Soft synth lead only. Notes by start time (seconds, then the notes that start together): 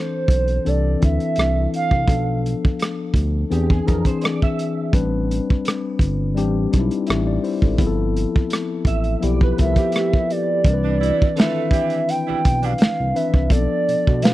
Already playing: C5
0.68 D5
1.04 E5
1.75 F5
9.60 E5
10.31 D5
11.39 E5
12.10 G5
12.65 F5
13.16 E5
13.52 D5
14.23 F5